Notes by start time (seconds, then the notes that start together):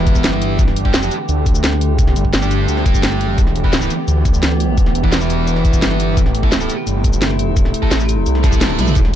Already playing: E1 E3 B3 E4 G4
0.07 kick, closed hi-hat, shaker
0.15 kick, shaker
0.24 G1, snare, closed hi-hat, shaker
0.33 E3 B3 E4, snare
0.42 closed hi-hat
0.59 G1 D3 A3, kick, closed hi-hat, shaker
0.68 snare
0.76 closed hi-hat
0.85 G3 D4 G4, kick
0.94 snare, closed hi-hat, shaker
1.02 G3 D4 G4, shaker
1.11 closed hi-hat, shaker
1.29 D2, closed hi-hat, shaker
1.46 kick, closed hi-hat, shaker
1.55 shaker
1.64 snare, closed hi-hat, shaker
1.72 snare
1.81 closed hi-hat
1.90 C#2
1.99 kick, closed hi-hat, shaker
2.07 snare
2.16 G1, closed hi-hat, shaker
2.25 kick
2.33 G1, snare, closed hi-hat, shaker
2.42 G3 D4 G4, shaker
2.51 closed hi-hat, shaker
2.68 D2, closed hi-hat, shaker
2.77 snare
2.85 G1 G3 D4 G4, kick, closed hi-hat, shaker
2.94 kick, shaker
3.03 snare, closed hi-hat, shaker
3.12 snare
3.21 closed hi-hat
3.38 E1 E3 B3 G4, kick, closed hi-hat, shaker
3.47 snare
3.56 closed hi-hat
3.64 E3 B3 E4, kick
3.73 snare, closed hi-hat, shaker
3.81 E3 B3 E4, shaker
3.90 closed hi-hat, shaker
4.08 D2, closed hi-hat, shaker
4.25 kick, closed hi-hat, shaker
4.34 shaker
4.43 snare, closed hi-hat, shaker
4.51 snare
4.60 closed hi-hat
4.78 kick, closed hi-hat, shaker
4.86 snare
4.95 E1, closed hi-hat
5.03 E3 B3 E4, kick
5.12 snare, closed hi-hat, shaker
5.21 E3 B3 E4, shaker
5.30 closed hi-hat, shaker
5.47 closed hi-hat, shaker
5.56 snare
5.65 kick, closed hi-hat, shaker
5.73 kick, shaker
5.82 G1, snare, closed hi-hat, shaker
5.91 E3 B3 E4, snare
6.00 closed hi-hat
6.17 A1 C3 A3 E4, kick, closed hi-hat, shaker
6.26 snare
6.35 closed hi-hat
6.43 A3 E4 A4, kick
6.52 snare, closed hi-hat, shaker
6.60 A3 E4 A4, shaker
6.70 closed hi-hat, shaker
6.87 G1, closed hi-hat, shaker
7.04 kick, closed hi-hat, shaker
7.13 shaker
7.22 snare, closed hi-hat, shaker
7.30 snare
7.39 closed hi-hat
7.57 kick, closed hi-hat, shaker
7.65 snare
7.74 closed hi-hat
7.82 A3 E4 A4, kick
7.91 A1, snare, closed hi-hat, shaker
8.00 shaker
8.09 closed hi-hat, shaker
8.26 C2, closed hi-hat, reverse cymbal, shaker
8.35 snare
8.44 A3 E4 A4, kick, snare, closed hi-hat, shaker
8.52 kick, shaker
8.61 snare, closed hi-hat, shaker
8.70 snare, high tom
8.79 B1, closed hi-hat, mid tom
8.87 mid tom, shaker
8.96 E1 E3 B3 G4, kick, closed hi-hat, shaker
9.05 snare